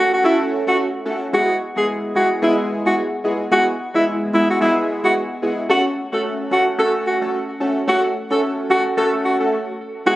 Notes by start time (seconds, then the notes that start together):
Already playing: A3 C#4 F#4 A4
0.13 F#4
0.24 A3 C#4 E4 F#4 A4
0.67 A3 C#4 F#4 A4
1.05 A3 C#4 F#4 A4
1.33 G#3 B3 E4 F#4 G#4
1.76 G#3 B3 E4 G#4
2.15 G#3 B3 E4 F#4 G#4
2.42 G#3 B3 E4 G#4
2.85 G#3 B3 E4 F#4 G#4
3.24 G#3 B3 E4 G#4
3.51 G#3 B3 E4 F#4 G#4
3.94 G#3 B3 E4 G#4
4.33 G#3 B3 E4 G#4
4.50 F#4
4.61 G#3 B3 E4 G#4
5.04 G#3 B3 E4 F#4 G#4
5.42 G#3 B3 E4 G#4
5.69 A3 C#4 F#4 A4
6.12 A3 C#4 F#4 A4
6.51 A3 C#4 F#4 A4
6.78 A3 C#4 F#4 A4
7.07 F#4
7.21 A3 C#4 F#4 A4
7.60 A3 C#4 F#4 A4
7.87 A3 C#4 F#4 A4
8.31 A3 C#4 F#4 A4
8.70 A3 C#4 F#4 A4
8.97 A3 C#4 F#4 A4
9.25 F#4
9.40 A3 C#4 F#4 A4
10.06 G#3 B3 E4 F#4 G#4